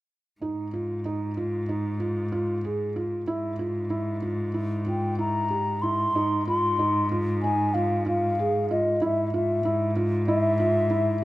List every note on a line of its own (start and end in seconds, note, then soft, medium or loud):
0.41 3.27 G#2 medium
0.41 0.67 D#4 medium
0.73 0.98 F4 soft
1.05 1.30 D#4 medium
1.37 1.62 F4 soft
1.69 1.94 D#4 medium
2.00 2.25 F4 soft
2.32 2.57 F4 medium
2.64 2.89 G#4 soft
2.96 3.21 F4 medium
3.27 6.11 G#2 medium
3.27 3.52 E4 medium
3.59 3.84 F4 soft
3.90 4.15 E4 medium
4.22 4.47 F4 medium
4.54 4.79 E4 medium
4.86 5.11 F4 soft
4.86 5.18 G5 medium
5.19 5.44 E4 medium
5.19 5.83 A#5 medium
5.50 5.76 G4 medium
5.82 6.08 E4 soft
5.82 6.47 C6 medium
6.15 9.03 G#2 medium
6.15 6.40 D#4 medium
6.47 6.72 F4 medium
6.47 7.08 C6 medium
6.79 7.04 D#4 medium
7.12 7.36 F4 medium
7.42 7.68 D#4 medium
7.42 7.75 G#5 medium
7.74 8.00 F4 medium
7.74 8.06 F5 medium
8.06 8.31 F4 medium
8.06 8.67 F5 medium
8.39 8.63 G#4 medium
8.71 8.95 F4 medium
8.71 9.04 D#5 medium
9.02 11.24 G#2 medium
9.02 9.26 E4 medium
9.02 9.34 E5 medium
9.34 9.58 F4 medium
9.34 9.93 E5 medium
9.65 9.89 E4 medium
9.96 10.21 F4 medium
10.27 10.52 E4 medium
10.27 11.24 E5 medium
10.60 10.84 F4 medium
10.90 11.15 E4 medium